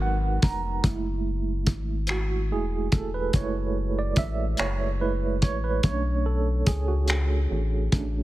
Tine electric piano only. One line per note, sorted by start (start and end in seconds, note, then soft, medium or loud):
0.00 0.79 G#3 medium
0.00 0.79 D#4 medium
0.00 0.80 F#4 medium
0.00 0.81 A#4 medium
0.00 0.82 B4 medium
0.00 0.40 F#5 medium
0.44 0.82 A#5 medium
0.85 2.05 G#3 soft
0.85 2.05 A3 soft
0.85 2.06 E4 medium
2.11 2.48 F#4 medium
2.51 2.88 G#3 soft
2.51 2.89 A3 soft
2.51 2.89 E4 soft
2.51 2.94 G#4 medium
2.93 3.02 A4 medium
3.14 3.33 B4 medium
3.35 5.00 G#3 medium
3.35 5.00 A3 soft
3.35 5.00 E4 medium
3.35 3.99 C#5 medium
3.99 4.19 D5 medium
4.18 4.56 E5 loud
4.60 5.02 C#5 loud
5.01 5.38 G#3 soft
5.01 5.38 A3 soft
5.01 5.39 E4 soft
5.01 5.44 B4 medium
5.43 5.64 C#5 medium
5.64 5.85 B4 medium
5.85 7.91 A3 medium
5.85 7.91 C#4 soft
5.85 7.92 D4 medium
5.85 6.27 C#5 medium
6.26 6.68 A4 medium
6.68 6.89 G#4 medium
6.88 7.67 F#4 medium
7.92 8.23 A3 soft
7.92 8.23 C#4 soft
7.92 8.23 D4 medium